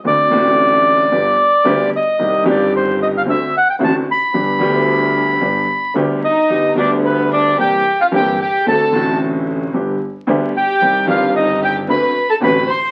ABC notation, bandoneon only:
X:1
M:4/4
L:1/16
Q:1/4=112
K:Gphr
V:1 name="Bandoneon"
d12- d2 e2- | e2 d2 c2 e f =e2 ^f g =a2 =b2- | =b12 z2 e2- | e2 d2 =B2 d2 g3 f g2 g2 |
=a4 z8 z2 g2- | g2 f2 e2 g2 =b3 =a b2 c'2 |]